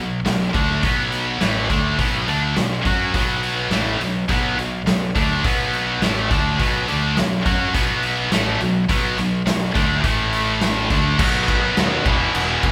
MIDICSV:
0, 0, Header, 1, 5, 480
1, 0, Start_track
1, 0, Tempo, 575816
1, 1654, Time_signature, 4, 2, 24, 8
1, 10602, End_track
2, 0, Start_track
2, 0, Title_t, "Distorted electric guitar"
2, 0, Program_c, 0, 30
2, 0, Note_on_c, 0, 47, 64
2, 0, Note_on_c, 0, 54, 61
2, 163, Note_off_c, 0, 47, 0
2, 166, Note_off_c, 0, 54, 0
2, 213, Note_on_c, 0, 47, 61
2, 220, Note_on_c, 0, 54, 74
2, 404, Note_off_c, 0, 47, 0
2, 408, Note_off_c, 0, 54, 0
2, 450, Note_on_c, 0, 50, 80
2, 454, Note_on_c, 0, 57, 80
2, 458, Note_on_c, 0, 62, 89
2, 682, Note_off_c, 0, 50, 0
2, 686, Note_off_c, 0, 57, 0
2, 686, Note_on_c, 0, 47, 91
2, 688, Note_off_c, 0, 62, 0
2, 693, Note_on_c, 0, 54, 86
2, 696, Note_on_c, 0, 59, 99
2, 1163, Note_off_c, 0, 47, 0
2, 1166, Note_off_c, 0, 54, 0
2, 1168, Note_off_c, 0, 59, 0
2, 1177, Note_on_c, 0, 45, 81
2, 1181, Note_on_c, 0, 52, 85
2, 1184, Note_on_c, 0, 57, 87
2, 1408, Note_off_c, 0, 45, 0
2, 1408, Note_off_c, 0, 57, 0
2, 1410, Note_off_c, 0, 52, 0
2, 1415, Note_on_c, 0, 50, 92
2, 1418, Note_on_c, 0, 57, 87
2, 1420, Note_on_c, 0, 62, 102
2, 1648, Note_off_c, 0, 50, 0
2, 1649, Note_off_c, 0, 57, 0
2, 1650, Note_off_c, 0, 62, 0
2, 1653, Note_on_c, 0, 47, 85
2, 1659, Note_on_c, 0, 54, 94
2, 1664, Note_on_c, 0, 59, 94
2, 1887, Note_off_c, 0, 47, 0
2, 1890, Note_off_c, 0, 54, 0
2, 1892, Note_off_c, 0, 59, 0
2, 1896, Note_on_c, 0, 50, 84
2, 1898, Note_on_c, 0, 57, 92
2, 1902, Note_on_c, 0, 62, 99
2, 2128, Note_off_c, 0, 50, 0
2, 2129, Note_off_c, 0, 57, 0
2, 2131, Note_off_c, 0, 62, 0
2, 2134, Note_on_c, 0, 47, 66
2, 2139, Note_on_c, 0, 54, 67
2, 2327, Note_off_c, 0, 47, 0
2, 2329, Note_off_c, 0, 54, 0
2, 2373, Note_on_c, 0, 54, 86
2, 2376, Note_on_c, 0, 61, 82
2, 2382, Note_on_c, 0, 66, 99
2, 2607, Note_off_c, 0, 54, 0
2, 2608, Note_off_c, 0, 61, 0
2, 2611, Note_off_c, 0, 66, 0
2, 2619, Note_on_c, 0, 47, 87
2, 2620, Note_on_c, 0, 54, 101
2, 2625, Note_on_c, 0, 59, 95
2, 3090, Note_off_c, 0, 47, 0
2, 3090, Note_off_c, 0, 54, 0
2, 3093, Note_off_c, 0, 59, 0
2, 3099, Note_on_c, 0, 45, 97
2, 3103, Note_on_c, 0, 52, 89
2, 3106, Note_on_c, 0, 57, 101
2, 3330, Note_off_c, 0, 45, 0
2, 3332, Note_off_c, 0, 52, 0
2, 3334, Note_off_c, 0, 57, 0
2, 3337, Note_on_c, 0, 47, 72
2, 3339, Note_on_c, 0, 54, 74
2, 3528, Note_off_c, 0, 47, 0
2, 3529, Note_off_c, 0, 54, 0
2, 3574, Note_on_c, 0, 47, 88
2, 3581, Note_on_c, 0, 54, 88
2, 3584, Note_on_c, 0, 59, 106
2, 3807, Note_off_c, 0, 47, 0
2, 3811, Note_off_c, 0, 54, 0
2, 3813, Note_off_c, 0, 59, 0
2, 3816, Note_on_c, 0, 47, 63
2, 3821, Note_on_c, 0, 54, 72
2, 4008, Note_off_c, 0, 47, 0
2, 4010, Note_off_c, 0, 54, 0
2, 4057, Note_on_c, 0, 47, 58
2, 4058, Note_on_c, 0, 54, 75
2, 4248, Note_off_c, 0, 47, 0
2, 4249, Note_off_c, 0, 54, 0
2, 4298, Note_on_c, 0, 50, 88
2, 4302, Note_on_c, 0, 57, 87
2, 4303, Note_on_c, 0, 62, 94
2, 4530, Note_off_c, 0, 50, 0
2, 4531, Note_off_c, 0, 57, 0
2, 4532, Note_off_c, 0, 62, 0
2, 4537, Note_on_c, 0, 47, 88
2, 4541, Note_on_c, 0, 54, 92
2, 4548, Note_on_c, 0, 59, 109
2, 5009, Note_off_c, 0, 47, 0
2, 5011, Note_off_c, 0, 54, 0
2, 5014, Note_off_c, 0, 59, 0
2, 5015, Note_on_c, 0, 45, 91
2, 5021, Note_on_c, 0, 52, 95
2, 5023, Note_on_c, 0, 57, 104
2, 5248, Note_off_c, 0, 45, 0
2, 5251, Note_off_c, 0, 52, 0
2, 5252, Note_off_c, 0, 57, 0
2, 5255, Note_on_c, 0, 50, 88
2, 5262, Note_on_c, 0, 57, 102
2, 5268, Note_on_c, 0, 62, 107
2, 5488, Note_off_c, 0, 50, 0
2, 5491, Note_off_c, 0, 57, 0
2, 5495, Note_off_c, 0, 62, 0
2, 5496, Note_on_c, 0, 47, 87
2, 5498, Note_on_c, 0, 54, 98
2, 5503, Note_on_c, 0, 59, 105
2, 5728, Note_off_c, 0, 47, 0
2, 5729, Note_off_c, 0, 54, 0
2, 5732, Note_off_c, 0, 59, 0
2, 5733, Note_on_c, 0, 50, 84
2, 5742, Note_on_c, 0, 57, 92
2, 5743, Note_on_c, 0, 62, 92
2, 5967, Note_off_c, 0, 50, 0
2, 5971, Note_off_c, 0, 57, 0
2, 5972, Note_off_c, 0, 62, 0
2, 5976, Note_on_c, 0, 47, 59
2, 5977, Note_on_c, 0, 54, 69
2, 6168, Note_off_c, 0, 47, 0
2, 6168, Note_off_c, 0, 54, 0
2, 6207, Note_on_c, 0, 54, 83
2, 6213, Note_on_c, 0, 61, 88
2, 6215, Note_on_c, 0, 66, 99
2, 6444, Note_off_c, 0, 54, 0
2, 6447, Note_off_c, 0, 61, 0
2, 6448, Note_off_c, 0, 66, 0
2, 6460, Note_on_c, 0, 47, 98
2, 6463, Note_on_c, 0, 54, 95
2, 6469, Note_on_c, 0, 59, 102
2, 6925, Note_off_c, 0, 47, 0
2, 6929, Note_on_c, 0, 45, 88
2, 6931, Note_off_c, 0, 54, 0
2, 6934, Note_on_c, 0, 52, 98
2, 6935, Note_off_c, 0, 59, 0
2, 6939, Note_on_c, 0, 57, 102
2, 7164, Note_off_c, 0, 45, 0
2, 7167, Note_off_c, 0, 52, 0
2, 7170, Note_off_c, 0, 57, 0
2, 7175, Note_on_c, 0, 47, 64
2, 7179, Note_on_c, 0, 54, 72
2, 7367, Note_off_c, 0, 47, 0
2, 7369, Note_off_c, 0, 54, 0
2, 7412, Note_on_c, 0, 47, 88
2, 7418, Note_on_c, 0, 54, 104
2, 7421, Note_on_c, 0, 59, 105
2, 7641, Note_off_c, 0, 47, 0
2, 7645, Note_off_c, 0, 54, 0
2, 7651, Note_off_c, 0, 59, 0
2, 7651, Note_on_c, 0, 47, 69
2, 7655, Note_on_c, 0, 54, 70
2, 7845, Note_off_c, 0, 47, 0
2, 7846, Note_off_c, 0, 54, 0
2, 7888, Note_on_c, 0, 47, 61
2, 7891, Note_on_c, 0, 54, 75
2, 8083, Note_off_c, 0, 47, 0
2, 8085, Note_off_c, 0, 54, 0
2, 8120, Note_on_c, 0, 50, 95
2, 8124, Note_on_c, 0, 57, 99
2, 8128, Note_on_c, 0, 62, 90
2, 8353, Note_off_c, 0, 50, 0
2, 8354, Note_off_c, 0, 57, 0
2, 8356, Note_on_c, 0, 45, 89
2, 8361, Note_off_c, 0, 62, 0
2, 8361, Note_on_c, 0, 52, 97
2, 8364, Note_on_c, 0, 57, 100
2, 9077, Note_off_c, 0, 45, 0
2, 9080, Note_off_c, 0, 52, 0
2, 9081, Note_off_c, 0, 57, 0
2, 9089, Note_on_c, 0, 50, 98
2, 9091, Note_on_c, 0, 57, 95
2, 9099, Note_on_c, 0, 62, 111
2, 9321, Note_on_c, 0, 47, 87
2, 9324, Note_off_c, 0, 50, 0
2, 9325, Note_off_c, 0, 57, 0
2, 9329, Note_off_c, 0, 62, 0
2, 9330, Note_on_c, 0, 51, 101
2, 9335, Note_on_c, 0, 54, 101
2, 9341, Note_on_c, 0, 59, 100
2, 9343, Note_on_c, 0, 63, 102
2, 10032, Note_off_c, 0, 47, 0
2, 10037, Note_off_c, 0, 51, 0
2, 10039, Note_off_c, 0, 54, 0
2, 10042, Note_off_c, 0, 59, 0
2, 10043, Note_off_c, 0, 63, 0
2, 10043, Note_on_c, 0, 52, 92
2, 10055, Note_on_c, 0, 56, 99
2, 10063, Note_on_c, 0, 59, 91
2, 10069, Note_on_c, 0, 64, 89
2, 10602, Note_off_c, 0, 52, 0
2, 10602, Note_off_c, 0, 56, 0
2, 10602, Note_off_c, 0, 59, 0
2, 10602, Note_off_c, 0, 64, 0
2, 10602, End_track
3, 0, Start_track
3, 0, Title_t, "Distorted electric guitar"
3, 0, Program_c, 1, 30
3, 10041, Note_on_c, 1, 40, 83
3, 10061, Note_on_c, 1, 47, 100
3, 10602, Note_off_c, 1, 40, 0
3, 10602, Note_off_c, 1, 47, 0
3, 10602, End_track
4, 0, Start_track
4, 0, Title_t, "Fingered electric bass"
4, 0, Program_c, 2, 33
4, 0, Note_on_c, 2, 35, 75
4, 196, Note_off_c, 2, 35, 0
4, 214, Note_on_c, 2, 35, 74
4, 436, Note_off_c, 2, 35, 0
4, 455, Note_on_c, 2, 38, 91
4, 677, Note_off_c, 2, 38, 0
4, 695, Note_on_c, 2, 35, 90
4, 1141, Note_off_c, 2, 35, 0
4, 1176, Note_on_c, 2, 33, 87
4, 1398, Note_off_c, 2, 33, 0
4, 1420, Note_on_c, 2, 38, 86
4, 1640, Note_off_c, 2, 38, 0
4, 1658, Note_on_c, 2, 35, 87
4, 1880, Note_off_c, 2, 35, 0
4, 1899, Note_on_c, 2, 38, 86
4, 2120, Note_off_c, 2, 38, 0
4, 2141, Note_on_c, 2, 35, 72
4, 2361, Note_off_c, 2, 35, 0
4, 2381, Note_on_c, 2, 42, 95
4, 2601, Note_off_c, 2, 42, 0
4, 2623, Note_on_c, 2, 35, 90
4, 3066, Note_off_c, 2, 35, 0
4, 3099, Note_on_c, 2, 33, 93
4, 3321, Note_off_c, 2, 33, 0
4, 3338, Note_on_c, 2, 35, 76
4, 3560, Note_off_c, 2, 35, 0
4, 3580, Note_on_c, 2, 35, 90
4, 3801, Note_off_c, 2, 35, 0
4, 3820, Note_on_c, 2, 35, 76
4, 4041, Note_off_c, 2, 35, 0
4, 4058, Note_on_c, 2, 35, 80
4, 4280, Note_off_c, 2, 35, 0
4, 4297, Note_on_c, 2, 38, 87
4, 4520, Note_off_c, 2, 38, 0
4, 4539, Note_on_c, 2, 35, 98
4, 4984, Note_off_c, 2, 35, 0
4, 5021, Note_on_c, 2, 33, 87
4, 5242, Note_off_c, 2, 33, 0
4, 5261, Note_on_c, 2, 38, 98
4, 5481, Note_off_c, 2, 38, 0
4, 5499, Note_on_c, 2, 35, 95
4, 5720, Note_off_c, 2, 35, 0
4, 5747, Note_on_c, 2, 38, 90
4, 5965, Note_off_c, 2, 38, 0
4, 5987, Note_on_c, 2, 35, 81
4, 6205, Note_off_c, 2, 35, 0
4, 6219, Note_on_c, 2, 42, 91
4, 6440, Note_off_c, 2, 42, 0
4, 6461, Note_on_c, 2, 35, 98
4, 6904, Note_off_c, 2, 35, 0
4, 6939, Note_on_c, 2, 33, 97
4, 7160, Note_off_c, 2, 33, 0
4, 7183, Note_on_c, 2, 35, 77
4, 7402, Note_off_c, 2, 35, 0
4, 7417, Note_on_c, 2, 35, 95
4, 7639, Note_off_c, 2, 35, 0
4, 7660, Note_on_c, 2, 35, 80
4, 7881, Note_off_c, 2, 35, 0
4, 7904, Note_on_c, 2, 35, 78
4, 8123, Note_off_c, 2, 35, 0
4, 8133, Note_on_c, 2, 38, 93
4, 8357, Note_off_c, 2, 38, 0
4, 8369, Note_on_c, 2, 33, 91
4, 9057, Note_off_c, 2, 33, 0
4, 9092, Note_on_c, 2, 38, 92
4, 9315, Note_off_c, 2, 38, 0
4, 9332, Note_on_c, 2, 35, 92
4, 9666, Note_off_c, 2, 35, 0
4, 9816, Note_on_c, 2, 39, 87
4, 9982, Note_off_c, 2, 39, 0
4, 10051, Note_on_c, 2, 28, 92
4, 10219, Note_off_c, 2, 28, 0
4, 10300, Note_on_c, 2, 28, 93
4, 10464, Note_off_c, 2, 28, 0
4, 10531, Note_on_c, 2, 28, 91
4, 10602, Note_off_c, 2, 28, 0
4, 10602, End_track
5, 0, Start_track
5, 0, Title_t, "Drums"
5, 213, Note_on_c, 9, 46, 73
5, 215, Note_on_c, 9, 38, 111
5, 297, Note_off_c, 9, 46, 0
5, 299, Note_off_c, 9, 38, 0
5, 453, Note_on_c, 9, 36, 107
5, 454, Note_on_c, 9, 46, 53
5, 537, Note_off_c, 9, 36, 0
5, 537, Note_off_c, 9, 46, 0
5, 692, Note_on_c, 9, 46, 76
5, 693, Note_on_c, 9, 36, 110
5, 776, Note_off_c, 9, 36, 0
5, 776, Note_off_c, 9, 46, 0
5, 933, Note_on_c, 9, 46, 56
5, 1017, Note_off_c, 9, 46, 0
5, 1174, Note_on_c, 9, 46, 69
5, 1175, Note_on_c, 9, 38, 105
5, 1257, Note_off_c, 9, 46, 0
5, 1259, Note_off_c, 9, 38, 0
5, 1416, Note_on_c, 9, 36, 98
5, 1419, Note_on_c, 9, 46, 52
5, 1500, Note_off_c, 9, 36, 0
5, 1502, Note_off_c, 9, 46, 0
5, 1657, Note_on_c, 9, 36, 99
5, 1658, Note_on_c, 9, 46, 77
5, 1740, Note_off_c, 9, 36, 0
5, 1741, Note_off_c, 9, 46, 0
5, 1898, Note_on_c, 9, 46, 52
5, 1982, Note_off_c, 9, 46, 0
5, 2137, Note_on_c, 9, 46, 75
5, 2139, Note_on_c, 9, 38, 104
5, 2220, Note_off_c, 9, 46, 0
5, 2222, Note_off_c, 9, 38, 0
5, 2378, Note_on_c, 9, 36, 104
5, 2380, Note_on_c, 9, 46, 61
5, 2461, Note_off_c, 9, 36, 0
5, 2463, Note_off_c, 9, 46, 0
5, 2619, Note_on_c, 9, 36, 109
5, 2623, Note_on_c, 9, 46, 81
5, 2703, Note_off_c, 9, 36, 0
5, 2706, Note_off_c, 9, 46, 0
5, 2858, Note_on_c, 9, 46, 60
5, 2942, Note_off_c, 9, 46, 0
5, 3092, Note_on_c, 9, 46, 81
5, 3093, Note_on_c, 9, 38, 100
5, 3175, Note_off_c, 9, 46, 0
5, 3177, Note_off_c, 9, 38, 0
5, 3340, Note_on_c, 9, 46, 60
5, 3423, Note_off_c, 9, 46, 0
5, 3573, Note_on_c, 9, 46, 74
5, 3577, Note_on_c, 9, 36, 108
5, 3656, Note_off_c, 9, 46, 0
5, 3661, Note_off_c, 9, 36, 0
5, 3821, Note_on_c, 9, 46, 60
5, 3905, Note_off_c, 9, 46, 0
5, 4059, Note_on_c, 9, 46, 75
5, 4061, Note_on_c, 9, 38, 107
5, 4142, Note_off_c, 9, 46, 0
5, 4144, Note_off_c, 9, 38, 0
5, 4298, Note_on_c, 9, 36, 100
5, 4299, Note_on_c, 9, 46, 58
5, 4381, Note_off_c, 9, 36, 0
5, 4382, Note_off_c, 9, 46, 0
5, 4538, Note_on_c, 9, 36, 111
5, 4538, Note_on_c, 9, 46, 77
5, 4621, Note_off_c, 9, 46, 0
5, 4622, Note_off_c, 9, 36, 0
5, 4779, Note_on_c, 9, 46, 54
5, 4863, Note_off_c, 9, 46, 0
5, 5017, Note_on_c, 9, 46, 72
5, 5019, Note_on_c, 9, 38, 104
5, 5100, Note_off_c, 9, 46, 0
5, 5102, Note_off_c, 9, 38, 0
5, 5259, Note_on_c, 9, 36, 107
5, 5263, Note_on_c, 9, 46, 51
5, 5343, Note_off_c, 9, 36, 0
5, 5347, Note_off_c, 9, 46, 0
5, 5498, Note_on_c, 9, 36, 101
5, 5501, Note_on_c, 9, 46, 77
5, 5581, Note_off_c, 9, 36, 0
5, 5585, Note_off_c, 9, 46, 0
5, 5736, Note_on_c, 9, 46, 55
5, 5820, Note_off_c, 9, 46, 0
5, 5976, Note_on_c, 9, 46, 71
5, 5978, Note_on_c, 9, 38, 109
5, 6060, Note_off_c, 9, 46, 0
5, 6061, Note_off_c, 9, 38, 0
5, 6217, Note_on_c, 9, 36, 103
5, 6221, Note_on_c, 9, 46, 56
5, 6300, Note_off_c, 9, 36, 0
5, 6304, Note_off_c, 9, 46, 0
5, 6455, Note_on_c, 9, 46, 79
5, 6456, Note_on_c, 9, 36, 105
5, 6539, Note_off_c, 9, 36, 0
5, 6539, Note_off_c, 9, 46, 0
5, 6691, Note_on_c, 9, 46, 58
5, 6774, Note_off_c, 9, 46, 0
5, 6933, Note_on_c, 9, 46, 83
5, 6935, Note_on_c, 9, 38, 110
5, 7017, Note_off_c, 9, 46, 0
5, 7018, Note_off_c, 9, 38, 0
5, 7173, Note_on_c, 9, 46, 59
5, 7256, Note_off_c, 9, 46, 0
5, 7412, Note_on_c, 9, 46, 88
5, 7413, Note_on_c, 9, 36, 107
5, 7496, Note_off_c, 9, 46, 0
5, 7497, Note_off_c, 9, 36, 0
5, 7653, Note_on_c, 9, 46, 60
5, 7736, Note_off_c, 9, 46, 0
5, 7891, Note_on_c, 9, 46, 86
5, 7893, Note_on_c, 9, 38, 117
5, 7975, Note_off_c, 9, 46, 0
5, 7976, Note_off_c, 9, 38, 0
5, 8129, Note_on_c, 9, 46, 61
5, 8130, Note_on_c, 9, 36, 105
5, 8213, Note_off_c, 9, 46, 0
5, 8214, Note_off_c, 9, 36, 0
5, 8368, Note_on_c, 9, 36, 108
5, 8368, Note_on_c, 9, 46, 84
5, 8451, Note_off_c, 9, 36, 0
5, 8451, Note_off_c, 9, 46, 0
5, 8608, Note_on_c, 9, 46, 64
5, 8692, Note_off_c, 9, 46, 0
5, 8846, Note_on_c, 9, 46, 73
5, 8848, Note_on_c, 9, 38, 104
5, 8930, Note_off_c, 9, 46, 0
5, 8931, Note_off_c, 9, 38, 0
5, 9088, Note_on_c, 9, 46, 55
5, 9089, Note_on_c, 9, 36, 102
5, 9172, Note_off_c, 9, 36, 0
5, 9172, Note_off_c, 9, 46, 0
5, 9329, Note_on_c, 9, 36, 115
5, 9330, Note_on_c, 9, 49, 122
5, 9330, Note_on_c, 9, 57, 88
5, 9413, Note_off_c, 9, 36, 0
5, 9413, Note_off_c, 9, 49, 0
5, 9413, Note_off_c, 9, 57, 0
5, 9571, Note_on_c, 9, 36, 92
5, 9572, Note_on_c, 9, 57, 68
5, 9654, Note_off_c, 9, 36, 0
5, 9656, Note_off_c, 9, 57, 0
5, 9812, Note_on_c, 9, 57, 82
5, 9813, Note_on_c, 9, 38, 120
5, 9895, Note_off_c, 9, 57, 0
5, 9897, Note_off_c, 9, 38, 0
5, 10051, Note_on_c, 9, 36, 105
5, 10052, Note_on_c, 9, 57, 63
5, 10134, Note_off_c, 9, 36, 0
5, 10135, Note_off_c, 9, 57, 0
5, 10292, Note_on_c, 9, 57, 97
5, 10375, Note_off_c, 9, 57, 0
5, 10529, Note_on_c, 9, 57, 71
5, 10531, Note_on_c, 9, 36, 94
5, 10602, Note_off_c, 9, 36, 0
5, 10602, Note_off_c, 9, 57, 0
5, 10602, End_track
0, 0, End_of_file